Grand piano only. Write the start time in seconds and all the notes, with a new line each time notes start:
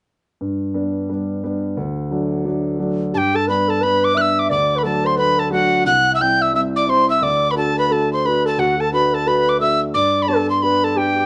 0.41 G2
0.74 G3 B3 D4
1.09 G3 B3 D4
1.43 G3 B3 D4
1.77 D2
2.11 F#3 A3 D4
2.45 F#3 A3 D4
2.79 F#3 A3 D4
3.14 G2
3.48 G3 B3 D4
3.82 G3 B3 D4
4.16 G3 B3 D4
4.50 D2
4.84 F#3 A3 D4
5.18 F#3 A3 D4
5.51 F#3 A3 D4
5.86 C2
6.20 G3 C4 E4
6.53 G3 C4 E4
6.87 G3 C4 E4
7.22 D2
7.56 A3 D4 F#4
7.90 A3 D4 F#4
8.25 A3 D4 F#4
8.58 D2
8.92 A3 D4 F#4
9.26 A3 D4 F#4
9.60 A3 D4 F#4
9.94 G2
10.28 B3 D4 G4
10.62 B3 D4 G4
10.96 B3 D4 G4